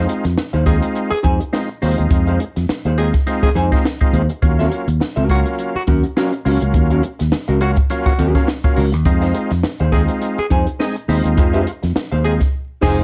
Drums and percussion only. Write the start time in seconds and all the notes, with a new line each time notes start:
0.09 closed hi-hat
0.25 snare, closed hi-hat
0.38 snare
0.66 kick, snare, closed hi-hat
0.82 closed hi-hat
0.96 closed hi-hat
1.11 closed hi-hat
1.24 kick, closed hi-hat
1.41 closed hi-hat
1.53 snare
1.82 snare, open hi-hat
1.98 closed hi-hat
2.11 kick, closed hi-hat
2.27 closed hi-hat
2.40 closed hi-hat
2.56 snare, closed hi-hat
2.69 snare
2.85 closed hi-hat
2.98 closed hi-hat
3.14 kick, snare, closed hi-hat
3.27 closed hi-hat
3.43 kick, snare, closed hi-hat
3.56 closed hi-hat
3.72 kick, snare, closed hi-hat
3.85 snare
4.01 kick, closed hi-hat
4.14 closed hi-hat
4.29 closed hi-hat
4.42 kick, closed hi-hat
4.59 snare
4.72 closed hi-hat
4.88 closed hi-hat
5.01 snare
5.17 closed hi-hat
5.29 kick, snare, closed hi-hat
5.46 closed hi-hat
5.58 closed hi-hat
5.87 kick, closed hi-hat
6.04 closed hi-hat
6.17 snare
6.33 closed hi-hat
6.45 snare, open hi-hat
6.62 closed hi-hat
6.74 kick, closed hi-hat
6.90 closed hi-hat
7.03 closed hi-hat
7.20 snare, closed hi-hat
7.32 snare
7.48 closed hi-hat
7.61 closed hi-hat
7.76 kick, closed hi-hat
7.90 closed hi-hat
8.06 kick, snare
8.19 closed hi-hat
8.35 kick, snare, closed hi-hat
8.48 snare
8.63 kick, closed hi-hat
8.77 open hi-hat
8.92 snare, closed hi-hat
9.05 kick, closed hi-hat
9.22 snare, closed hi-hat
9.35 closed hi-hat
9.51 snare, closed hi-hat
9.63 snare
9.79 closed hi-hat
9.92 kick, snare, closed hi-hat
10.08 closed hi-hat
10.22 closed hi-hat
10.38 closed hi-hat
10.50 kick, closed hi-hat
10.67 closed hi-hat
10.80 snare
10.96 closed hi-hat
11.09 snare, open hi-hat
11.25 closed hi-hat
11.37 kick, closed hi-hat
11.54 closed hi-hat
11.67 closed hi-hat
11.83 snare, closed hi-hat
11.96 snare
12.24 closed hi-hat
12.41 kick, snare, closed hi-hat
12.82 kick, snare, crash